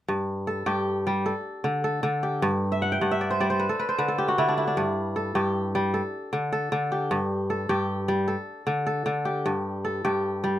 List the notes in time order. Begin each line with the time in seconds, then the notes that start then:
0.08 G2
0.47 A4
0.66 G2 G4
1.07 G3
1.26 A4
1.64 D3
1.84 A4
2.03 D3
2.23 G4
2.42 G2
2.72 E5
2.82 F#5
2.92 G5
3.01 G2 F#5
3.11 E5
3.21 D5
3.31 C5
3.40 G3 D5
3.50 C5
3.59 B4
3.69 A4
3.80 B4
3.89 C5
3.98 D3 B4
4.08 A4
4.18 G4
4.28 F#4
4.38 D3 E4
4.48 D4
4.58 E4
4.67 D4
4.77 G2
5.16 A4
5.35 G2 G4
5.75 G3
5.94 A4
6.33 D3
6.52 A4
6.72 D3
6.92 G4
7.11 G2
7.50 A4
7.69 G2 G4
8.08 G3
8.28 A4
8.67 D3
8.87 A4
9.06 D3
9.25 G4
9.46 G2
9.85 A4
10.05 G2 G4
10.44 G3